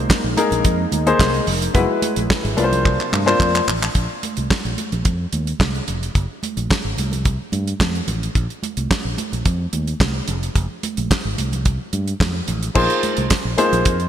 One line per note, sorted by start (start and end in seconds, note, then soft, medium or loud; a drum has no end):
0.00 1.72 G#3 medium
0.00 1.72 A#3 medium
0.00 1.73 D#4 loud
0.09 kick loud
0.09 snare loud
0.09 clap loud
0.09 muted conga soft
0.24 0.33 A#1 medium
0.37 0.75 A#3 medium
0.37 0.75 D#4 medium
0.37 0.75 G#4 medium
0.37 0.75 A#4 loud
0.37 closed hi-hat medium
0.37 muted conga soft
0.37 high conga medium
0.51 0.61 A#1 medium
0.51 closed hi-hat medium
0.51 low conga medium
0.65 0.84 F2 medium
0.65 kick loud
0.65 closed hi-hat loud
0.92 1.12 D#2 medium
0.92 closed hi-hat medium
0.92 muted conga soft
0.92 high conga medium
1.06 1.43 A#3 loud
1.06 1.43 D#4 medium
1.06 1.43 G#4 loud
1.06 1.43 C5 loud
1.06 closed hi-hat soft
1.19 1.39 C2 medium
1.19 kick loud
1.19 snare loud
1.19 clap medium
1.19 high conga medium
1.34 closed hi-hat soft
1.47 1.67 F1 medium
1.47 open hi-hat medium
1.47 muted conga soft
1.47 low conga medium
1.62 closed hi-hat medium
1.74 1.85 F#1 loud
1.74 2.57 F#3 medium
1.74 2.19 G#3 medium
1.74 2.19 E4 medium
1.74 2.57 E4 medium
1.74 2.20 F#4 medium
1.74 2.57 G#4 medium
1.74 2.20 B4 medium
1.74 2.57 B4 medium
1.74 kick loud
1.74 closed hi-hat medium
1.74 low conga medium
2.02 closed hi-hat medium
2.02 muted conga soft
2.02 high conga medium
2.16 2.26 A#1 medium
2.16 closed hi-hat medium
2.16 high conga medium
2.30 kick loud
2.30 snare loud
2.30 clap loud
2.45 2.54 G#1 medium
2.45 closed hi-hat soft
2.57 2.96 C2 medium
2.57 3.94 C3 medium
2.57 3.12 A#3 medium
2.57 3.93 A#3 medium
2.57 3.12 D4 medium
2.57 3.94 D4 medium
2.57 3.12 F4 medium
2.57 3.94 F4 medium
2.57 2.64 B4 medium
2.57 closed hi-hat medium
2.57 high conga medium
2.64 3.16 C5 medium
2.72 closed hi-hat soft
2.72 low conga medium
2.85 kick loud
2.85 clap medium
2.85 muted conga soft
3.01 clap medium
3.12 3.32 G2 medium
3.12 clap medium
3.12 high conga medium
3.26 3.63 A#3 loud
3.26 3.63 D4 loud
3.26 3.63 F4 medium
3.26 3.63 C5 loud
3.26 clap medium
3.40 3.59 F2 loud
3.40 kick loud
3.40 clap medium
3.40 high conga medium
3.55 clap medium
3.55 high conga medium
3.68 3.87 A1 medium
3.68 clap loud
3.68 low conga medium
3.83 clap loud
3.95 4.05 A#1 loud
3.95 kick medium
3.95 closed hi-hat medium
3.95 muted conga soft
4.23 closed hi-hat medium
4.23 high conga medium
4.37 4.47 C2 medium
4.37 closed hi-hat soft
4.37 high conga medium
4.50 kick loud
4.50 snare loud
4.50 clap medium
4.65 4.74 A#1 medium
4.65 closed hi-hat soft
4.78 closed hi-hat medium
4.78 high conga medium
4.92 5.02 A#1 medium
4.92 closed hi-hat soft
4.92 low conga medium
5.05 5.25 F2 medium
5.05 kick loud
5.05 closed hi-hat medium
5.05 muted conga soft
5.33 5.52 D#2 medium
5.33 closed hi-hat medium
5.33 muted conga soft
5.33 high conga medium
5.47 closed hi-hat soft
5.60 5.79 C2 medium
5.60 kick loud
5.60 snare loud
5.60 clap medium
5.60 high conga medium
5.75 closed hi-hat soft
5.88 6.07 F1 medium
5.88 closed hi-hat medium
5.88 muted conga soft
5.88 low conga medium
6.03 closed hi-hat medium
6.15 6.25 F#1 loud
6.15 kick loud
6.15 closed hi-hat medium
6.15 muted conga soft
6.43 closed hi-hat medium
6.43 muted conga soft
6.43 high conga medium
6.57 6.66 A#1 medium
6.57 closed hi-hat soft
6.57 high conga medium
6.70 kick loud
6.70 snare loud
6.70 clap medium
6.70 muted conga soft
6.85 6.94 G#1 medium
6.97 7.37 C2 medium
6.97 closed hi-hat medium
6.97 high conga medium
7.12 closed hi-hat soft
7.12 low conga medium
7.25 kick loud
7.25 closed hi-hat medium
7.25 muted conga soft
7.52 7.72 G2 medium
7.52 closed hi-hat medium
7.52 muted conga soft
7.52 high conga medium
7.67 closed hi-hat soft
7.80 8.00 F2 medium
7.80 kick loud
7.80 snare loud
7.80 clap medium
7.80 muted conga soft
7.80 high conga medium
7.95 closed hi-hat soft
8.07 8.27 A1 medium
8.07 closed hi-hat medium
8.07 muted conga soft
8.07 low conga medium
8.23 closed hi-hat medium
8.35 8.46 A#1 loud
8.35 kick loud
8.35 closed hi-hat medium
8.50 closed hi-hat soft
8.63 closed hi-hat medium
8.63 high conga medium
8.77 8.86 C2 medium
8.77 closed hi-hat soft
8.77 high conga medium
8.91 kick loud
8.91 snare loud
8.91 clap medium
9.05 9.14 A#1 medium
9.18 closed hi-hat medium
9.18 muted conga soft
9.18 high conga medium
9.32 9.42 A#1 medium
9.32 closed hi-hat soft
9.32 low conga medium
9.45 9.65 F2 medium
9.45 kick loud
9.45 closed hi-hat medium
9.45 muted conga soft
9.73 9.93 D#2 medium
9.73 closed hi-hat medium
9.73 muted conga soft
9.73 high conga medium
9.87 closed hi-hat soft
10.00 10.20 C2 medium
10.00 kick loud
10.00 snare loud
10.00 clap medium
10.00 muted conga soft
10.00 high conga medium
10.28 10.48 F1 medium
10.28 closed hi-hat medium
10.28 muted conga soft
10.28 low conga medium
10.43 closed hi-hat medium
10.55 10.66 F#1 loud
10.55 kick loud
10.55 closed hi-hat medium
10.55 muted conga soft
10.55 low conga medium
10.83 closed hi-hat medium
10.83 high conga medium
10.97 11.07 A#1 medium
10.97 closed hi-hat soft
10.97 high conga medium
11.11 kick loud
11.11 snare loud
11.11 clap medium
11.25 11.34 G#1 medium
11.38 11.77 C2 medium
11.38 closed hi-hat medium
11.38 muted conga soft
11.38 high conga medium
11.52 closed hi-hat soft
11.52 low conga medium
11.65 kick loud
11.65 closed hi-hat medium
11.93 12.12 G2 medium
11.93 closed hi-hat medium
11.93 high conga medium
12.08 closed hi-hat soft
12.20 12.40 F2 medium
12.20 kick loud
12.20 snare loud
12.20 clap medium
12.20 high conga medium
12.48 12.68 A1 medium
12.48 closed hi-hat medium
12.48 muted conga soft
12.48 low conga medium
12.63 closed hi-hat medium
12.74 12.86 A#1 loud
12.74 13.20 A#3 medium
12.74 13.20 D#4 medium
12.74 13.20 F4 medium
12.74 13.20 G#4 medium
12.74 13.21 C5 loud
12.74 kick loud
12.74 crash loud
12.74 muted conga soft
12.74 low conga medium
12.90 closed hi-hat soft
13.03 closed hi-hat medium
13.03 high conga medium
13.17 13.27 C2 medium
13.17 closed hi-hat medium
13.17 high conga medium
13.30 kick loud
13.30 snare loud
13.30 clap medium
13.30 closed hi-hat loud
13.30 muted conga soft
13.45 13.54 A#1 medium
13.57 13.95 A#3 loud
13.57 13.95 D#4 medium
13.57 13.96 F4 medium
13.57 13.96 G#4 medium
13.57 13.96 C5 loud
13.57 closed hi-hat medium
13.57 high conga medium
13.72 13.82 A#1 medium
13.72 closed hi-hat medium
13.72 low conga medium
13.85 14.05 F2 loud
13.85 kick loud
13.85 closed hi-hat medium
13.85 muted conga soft
14.00 closed hi-hat soft